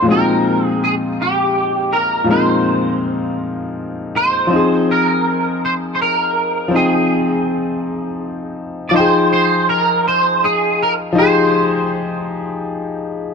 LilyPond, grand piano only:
\new Staff \with { instrumentName = "Grand piano" } { \time 6/8 \key f \minor \tempo 4. = 54 <bes, f aes c' ees' ges' g''>2. | <bes, f aes c' ees' bes'>2. | <f c' ees' aes'>2. | <f c' ees' g''>2. |
<f ees' aes' g''>2. | <f ees' g' aes'>2. | }